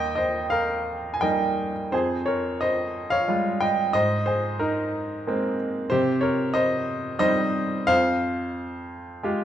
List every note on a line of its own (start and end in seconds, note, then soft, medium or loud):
0.00 1.88 D#2 soft
0.00 0.14 D#5 medium
0.00 0.17 G5 medium
0.15 0.49 C5 soft
0.15 0.52 D#5 medium
0.50 1.11 A#4 medium
0.50 1.10 F5 medium
1.14 1.22 G#5 medium
1.21 1.90 G3 soft
1.21 1.90 A#3 soft
1.21 1.91 D#4 soft
1.21 1.72 D#5 medium
1.21 1.71 G5 medium
1.92 3.90 F2 soft
1.92 2.25 G#4 medium
1.92 2.27 C5 medium
2.26 2.59 A#4 soft
2.26 2.58 C#5 medium
2.61 3.08 C5 medium
2.61 3.08 D#5 medium
3.10 3.58 C#5 medium
3.10 3.62 F5 medium
3.28 3.92 G3 soft
3.28 3.92 G#3 soft
3.28 3.92 F4 soft
3.60 3.92 D#5 medium
3.60 3.95 G5 medium
3.93 5.86 G#2 soft
3.93 4.24 C5 medium
3.93 4.28 D#5 medium
4.26 4.58 G#4 soft
4.26 4.61 C5 medium
4.59 5.54 D#4 soft
4.59 5.54 A#4 medium
5.27 5.89 G#3 soft
5.27 5.89 A#3 soft
5.27 5.89 C4 soft
5.90 7.85 C3 medium
5.90 6.21 G4 medium
5.90 6.23 C5 medium
6.21 6.52 A#4 medium
6.21 6.54 C#5 medium
6.54 7.16 C5 medium
6.54 7.18 D#5 medium
7.19 7.85 G3 soft
7.19 7.86 C4 soft
7.19 7.86 D#4 medium
7.19 7.84 C5 medium
7.19 7.84 D#5 medium
7.87 9.44 F2 medium
7.87 9.20 C5 medium
7.87 9.20 F5 loud
9.23 9.44 G#3 soft
9.23 9.44 F4 soft
9.23 9.44 G4 medium